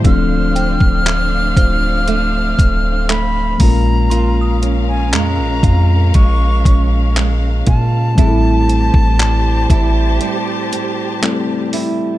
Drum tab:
HH |x-x-x-x-x-x---o-|x-x-x-x-x-x---x-|x-x-x-x-x-x---o-|
CP |----x-------x---|----x-------x---|----x-------x---|
BD |o--o--o---o---o-|------o-o-o---o-|o--o--o---------|